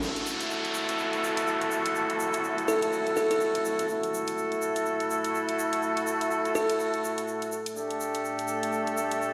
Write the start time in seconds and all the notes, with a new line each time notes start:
0.02 A3 E4 F#4 A4, downlifter, shaker
0.16 closed hi-hat, shaker
0.26 shaker
0.41 closed hi-hat, shaker
0.51 shaker
0.64 closed hi-hat, shaker
0.74 shaker
0.89 closed hi-hat, shaker
0.99 shaker
1.13 closed hi-hat, shaker
1.24 shaker
1.37 closed hi-hat, shaker
1.47 shaker
1.61 closed hi-hat, shaker
1.71 shaker
1.86 closed hi-hat, shaker
1.95 shaker
2.10 closed hi-hat, shaker
2.20 shaker
2.33 closed hi-hat, shaker
2.44 shaker
2.58 closed hi-hat, shaker
2.68 A4, shaker
2.82 closed hi-hat, shaker
2.93 shaker
3.06 closed hi-hat, shaker
3.16 A4, shaker
3.31 A4, closed hi-hat, shaker
3.41 shaker
3.55 closed hi-hat, shaker
3.65 shaker
3.79 closed hi-hat, shaker
3.89 A3 E4 F#4 A4, shaker
4.03 closed hi-hat, shaker
4.14 shaker
4.27 closed hi-hat, shaker
4.38 shaker
4.52 closed hi-hat, shaker
4.62 shaker
4.76 closed hi-hat, shaker
4.86 shaker
5.00 closed hi-hat, shaker
5.10 shaker
5.24 closed hi-hat, shaker
5.35 shaker
5.48 closed hi-hat, shaker
5.59 shaker
5.73 closed hi-hat, shaker
5.83 shaker
5.97 closed hi-hat, shaker
6.07 shaker
6.21 closed hi-hat, shaker
6.31 shaker
6.45 closed hi-hat, shaker
6.55 A4, shaker
6.70 closed hi-hat, shaker
6.80 shaker
6.94 closed hi-hat, shaker
7.04 shaker
7.18 closed hi-hat, shaker
7.28 shaker
7.42 closed hi-hat, shaker
7.52 shaker
7.66 closed hi-hat, shaker
7.76 A3 D4 G4 A4 D5, shaker
7.91 closed hi-hat, shaker
8.00 shaker
8.14 closed hi-hat, shaker
8.25 shaker
8.39 closed hi-hat, shaker
8.48 shaker
8.63 closed hi-hat, shaker
8.72 shaker
8.87 closed hi-hat, shaker
8.97 shaker
9.11 closed hi-hat, shaker
9.22 shaker